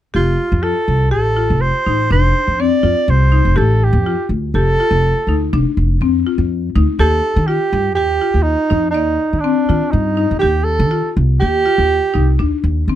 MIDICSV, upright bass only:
0, 0, Header, 1, 2, 480
1, 0, Start_track
1, 0, Tempo, 489796
1, 144, Time_signature, 7, 2, 24, 8
1, 12694, End_track
2, 0, Start_track
2, 0, Title_t, "Upright bass"
2, 0, Program_c, 0, 32
2, 144, Note_on_c, 0, 29, 69
2, 343, Note_off_c, 0, 29, 0
2, 507, Note_on_c, 0, 41, 75
2, 705, Note_off_c, 0, 41, 0
2, 861, Note_on_c, 0, 36, 71
2, 1109, Note_off_c, 0, 36, 0
2, 1109, Note_on_c, 0, 33, 74
2, 1472, Note_on_c, 0, 29, 71
2, 1486, Note_off_c, 0, 33, 0
2, 1666, Note_off_c, 0, 29, 0
2, 1828, Note_on_c, 0, 33, 61
2, 2063, Note_on_c, 0, 29, 78
2, 2078, Note_off_c, 0, 33, 0
2, 2261, Note_off_c, 0, 29, 0
2, 2424, Note_on_c, 0, 41, 62
2, 2621, Note_off_c, 0, 41, 0
2, 2776, Note_on_c, 0, 41, 70
2, 2876, Note_off_c, 0, 41, 0
2, 3018, Note_on_c, 0, 36, 85
2, 3317, Note_off_c, 0, 36, 0
2, 3381, Note_on_c, 0, 29, 72
2, 3479, Note_off_c, 0, 29, 0
2, 3502, Note_on_c, 0, 33, 78
2, 3848, Note_on_c, 0, 41, 82
2, 3863, Note_off_c, 0, 33, 0
2, 4051, Note_off_c, 0, 41, 0
2, 4207, Note_on_c, 0, 38, 74
2, 4410, Note_off_c, 0, 38, 0
2, 4449, Note_on_c, 0, 29, 70
2, 4651, Note_off_c, 0, 29, 0
2, 4809, Note_on_c, 0, 29, 74
2, 5011, Note_off_c, 0, 29, 0
2, 5164, Note_on_c, 0, 38, 61
2, 5367, Note_off_c, 0, 38, 0
2, 5420, Note_on_c, 0, 29, 78
2, 5517, Note_off_c, 0, 29, 0
2, 5655, Note_on_c, 0, 29, 72
2, 5854, Note_off_c, 0, 29, 0
2, 5887, Note_on_c, 0, 41, 73
2, 6089, Note_off_c, 0, 41, 0
2, 6252, Note_on_c, 0, 41, 70
2, 6551, Note_off_c, 0, 41, 0
2, 6620, Note_on_c, 0, 38, 81
2, 6716, Note_off_c, 0, 38, 0
2, 6848, Note_on_c, 0, 39, 75
2, 7049, Note_off_c, 0, 39, 0
2, 7216, Note_on_c, 0, 51, 89
2, 7414, Note_off_c, 0, 51, 0
2, 7571, Note_on_c, 0, 43, 85
2, 7813, Note_off_c, 0, 43, 0
2, 7813, Note_on_c, 0, 39, 77
2, 8012, Note_off_c, 0, 39, 0
2, 8173, Note_on_c, 0, 39, 62
2, 8372, Note_off_c, 0, 39, 0
2, 8534, Note_on_c, 0, 41, 73
2, 8777, Note_off_c, 0, 41, 0
2, 8777, Note_on_c, 0, 39, 78
2, 8976, Note_off_c, 0, 39, 0
2, 9143, Note_on_c, 0, 51, 58
2, 9339, Note_off_c, 0, 51, 0
2, 9499, Note_on_c, 0, 51, 73
2, 9597, Note_off_c, 0, 51, 0
2, 9732, Note_on_c, 0, 43, 78
2, 10033, Note_off_c, 0, 43, 0
2, 10103, Note_on_c, 0, 39, 73
2, 10200, Note_off_c, 0, 39, 0
2, 10220, Note_on_c, 0, 39, 71
2, 10578, Note_on_c, 0, 51, 88
2, 10593, Note_off_c, 0, 39, 0
2, 10778, Note_off_c, 0, 51, 0
2, 10943, Note_on_c, 0, 36, 80
2, 11141, Note_off_c, 0, 36, 0
2, 11190, Note_on_c, 0, 39, 72
2, 11386, Note_off_c, 0, 39, 0
2, 11546, Note_on_c, 0, 39, 66
2, 11744, Note_off_c, 0, 39, 0
2, 11907, Note_on_c, 0, 36, 65
2, 12106, Note_off_c, 0, 36, 0
2, 12147, Note_on_c, 0, 39, 67
2, 12246, Note_off_c, 0, 39, 0
2, 12383, Note_on_c, 0, 39, 73
2, 12584, Note_off_c, 0, 39, 0
2, 12619, Note_on_c, 0, 51, 68
2, 12694, Note_off_c, 0, 51, 0
2, 12694, End_track
0, 0, End_of_file